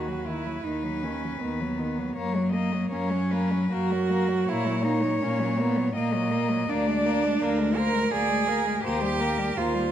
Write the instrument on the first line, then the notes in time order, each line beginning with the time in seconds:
cello
Already playing: D#2 F#4 B4
0.08 F#3
0.26 D#3 E4
0.46 F#3
0.64 D#2 D#3 D#4
0.83 F#3
1.03 D#3 C#4
1.24 F#3
1.41 D#2 D#3 B3
1.61 F#3
1.79 D#3
1.98 F#3
2.17 F#2 A#3 C#5
2.36 F#3
2.53 A#3 D#5
2.74 F#3
2.91 F#2 A#3 C#4 C#5
3.12 F#3
3.31 A#3 B4
3.52 F#3
3.72 F#2 A#3 F#4 A#4
3.93 F#3
4.11 A#3
4.29 F#3
4.48 A#2 A#3 E4 C#5
4.66 F#3
4.84 A#3 D#4
5.03 F#3
5.22 A#2 A#3 C#4
5.41 F#3
5.59 A#3 B3
5.78 F#3
5.95 A#2 A#3 D#5
6.15 F#3
6.32 A#3
6.51 F#3
6.69 D2 A#3 D4 D5
6.87 G#3
7.06 A#3
7.24 G#3
7.41 D2 A#3 A#4
7.59 G#3
7.76 A#3 A#4 C5
7.93 G#3
8.11 D2 A#3 G#4 D5
8.28 G#3
8.47 A#3 A#4
8.66 G#3
8.83 D#2 A#3 G4 C5
9.03 G3
9.20 A#3 A#4
9.38 G3
9.57 D#2 A#3 F4 C5
9.74 G3